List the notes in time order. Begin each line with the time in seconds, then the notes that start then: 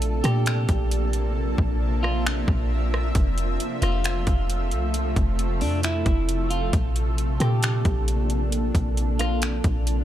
Already playing: A#1 C3 F3 A#3 D4 A4
0.02 closed hi-hat
0.24 A#2 G4, cross-stick, closed hi-hat
0.46 finger snap, closed hi-hat
0.69 A#1, kick, closed hi-hat
0.91 closed hi-hat
1.13 closed hi-hat
1.36 E5
1.58 A#1, kick
2.03 F4, cross-stick
2.27 finger snap
2.48 A#1, kick
2.94 cross-stick
3.15 F1 C3 A3 A4, kick, closed hi-hat
3.38 closed hi-hat
3.60 closed hi-hat
3.82 F1 F4, cross-stick, closed hi-hat
4.04 finger snap, closed hi-hat
4.27 F1, kick, closed hi-hat
4.50 closed hi-hat
4.71 C2, closed hi-hat
4.94 closed hi-hat
5.16 F1, kick, closed hi-hat
5.39 closed hi-hat
5.61 F2 D4, open hi-hat
5.83 E4, finger snap, closed hi-hat
6.06 F1, kick, closed hi-hat
6.29 closed hi-hat
6.50 F4, closed hi-hat
6.73 A#1 F3 A#3 D4, kick, closed hi-hat
6.96 closed hi-hat
7.18 closed hi-hat
7.40 A#2 G4, cross-stick, closed hi-hat
7.63 finger snap, closed hi-hat
7.85 A#1, kick, closed hi-hat
8.08 closed hi-hat
8.30 closed hi-hat
8.52 closed hi-hat
8.75 A#1, kick, closed hi-hat
8.97 closed hi-hat
9.19 F4, cross-stick, closed hi-hat
9.42 finger snap, closed hi-hat
9.64 A#1, kick, closed hi-hat
9.87 closed hi-hat